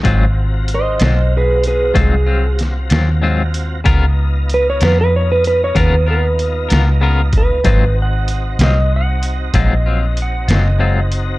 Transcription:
<<
  \new Staff \with { instrumentName = "Electric slide guitar" } { \time 12/8 \key aes \mixolydian \tempo 4. = 63 r4 <c'' ees''>8 <c'' ees''>8 <aes' ces''>8 <aes' ces''>8 aes'4 r2 | r4 ces''16 des''16 ces''16 ces''16 des''16 ces''16 ces''16 des''16 ces''8 ces''4 r4 ces''8~ | ces''8 ges''4 ees''8 ges''4 ees''4 ges''8 ees''4 r8 | }
  \new Staff \with { instrumentName = "Tonewheel organ" } { \time 12/8 \key aes \mixolydian <c' f' ges' bes''>1. | <ces' ees' f' bes''>1. | <c' ees' ges' bes''>1. | }
  \new Staff \with { instrumentName = "Clean electric guitar" } { \time 12/8 \key aes \mixolydian <aes, ges c' f'>8 r4 <ges c' f'>8 r4 <aes, ges c' f'>8 <ges c' f'>8 r8 <ges c' f'>8 <aes, ges c' f'>8 r8 | <des ces' f' bes'>8 r4 <ces' f' bes'>8 r4 <des ces' f' bes'>8 <ces' f' bes'>8 r8 <ces' f' bes'>8 <des ces' f' bes'>8 r8 | <aes, ges c' f'>8 r4 <ges c' f'>8 r4 <aes, ges c' f'>8 <ges c' f'>8 r8 <ges c' f'>8 <aes, ges c' f'>8 r8 | }
  \new Staff \with { instrumentName = "Fingered electric bass" } { \clef bass \time 12/8 \key aes \mixolydian aes,,4. ces,4. c,4. ees,4. | des,4. f,4. ees,4. des,4. | aes,,4. c,4. bes,,4. ges,,4. | }
  \new DrumStaff \with { instrumentName = "Drums" } \drummode { \time 12/8 <hh bd>4 hh8 <hh sn>4 hh8 <hh bd>4 <hh sn>8 <hh sn>4 hh8 | <hh bd>4 hh8 <hh sn>4 hh8 <hh bd>4 hh8 <hh sn>4 <hh bd>8 | <hh bd>4 hh8 <hh sn>4 hh8 <hh bd>4 hh8 <hh sn>4 hh8 | }
>>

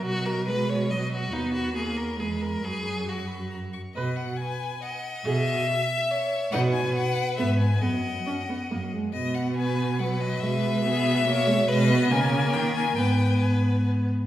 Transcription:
<<
  \new Staff \with { instrumentName = "Violin" } { \time 3/4 \key b \major \tempo 4 = 140 dis''2 dis''4 | b''2 b''4 | b''4 cis'''8 b''8 ais''8 cis'''8 | dis''8 fis''8 gis''4 fis''4 |
e''2. | fis''8 gis''8 fis''4 e''8 gis''8 | fis''2~ fis''8 r8 | dis''8 fis''8 gis''4 fis''8 dis''8 |
e''2. | \key gis \minor dis''4 gis''4 g''8 gis''8 | g''4 gis''4 r4 | }
  \new Staff \with { instrumentName = "Violin" } { \time 3/4 \key b \major fis'8 ais'8 b'8 cis''8 dis''8 fis'8 | dis'8 fis'8 gis'8 ais'8 gis'8 ais'8 | gis'4 fis'4. r8 | r4 b'4 dis''4~ |
dis''4 e''4 cis''4 | b'2. | dis''2~ dis''8 r8 | r4 b'4 b'4~ |
b'4 gis'4 cis''4 | \key gis \minor b'4 ais'2 | b'2~ b'8 r8 | }
  \new Staff \with { instrumentName = "Viola" } { \time 3/4 \key b \major fis4 gis4 fis4 | b4 ais4 gis4 | fis2~ fis8 r8 | b'8 r2 r8 |
gis'8 r2 r8 | dis'8 r4. b8 r8 | b8 r8 cis'8 b8 ais8 gis8 | b2 fis4 |
gis4 b4 ais8 gis8 | \key gis \minor gis8 b8 ais2 | b2~ b8 r8 | }
  \new Staff \with { instrumentName = "Cello" } { \clef bass \time 3/4 \key b \major b,2. | dis,2 e,4 | fis,2~ fis,8 r8 | b,4 r2 |
b,4 r2 | b,4 r4 gis,4 | fis,4 r4 fis,4 | b,2. |
b,2. | \key gis \minor b,4 cis4 dis4 | gis,2~ gis,8 r8 | }
>>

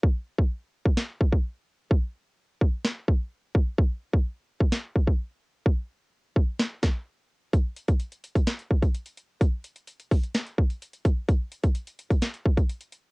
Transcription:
\new DrumStaff \with { instrumentName = "Drums" } \drummode { \time 4/4 \tempo 4 = 128 bd8. bd16 r8. bd16 sn8 bd16 bd16 r4 | bd4 r8 bd8 sn8 bd8 r8 bd8 | bd8. bd16 r8. bd16 sn8 bd16 bd16 r4 | bd4 r8 bd8 sn8 <bd sn>8 r4 |
<hh bd>8 hh16 <hh bd>16 hh16 hh16 hh16 <hh bd>16 <hh sn>16 hh16 bd16 <hh bd>16 hh16 hh16 hh8 | <hh bd>8 hh16 hh16 hh16 hh16 <hho bd>16 hh16 <hh sn>16 hh16 bd16 hh16 hh16 hh16 <hh bd>8 | <hh bd>8 hh16 <hh bd>16 hh16 hh16 hh16 <hh bd>16 <hh sn>16 hh16 bd16 <hh bd>16 hh16 hh16 hh8 | }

